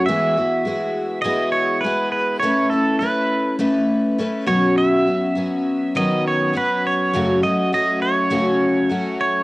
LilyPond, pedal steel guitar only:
\new Staff \with { instrumentName = "Pedal steel guitar" } { \time 4/4 \key e \major \tempo 4 = 102 e''2 dis''8 cis''8 b'8 b'8 | cis''8 a'8 b'4 r4. cis''8 | e''2 dis''8 cis''8 b'8 cis''8~ | cis''8 dis''8 dis''8 cis''2 cis''8 | }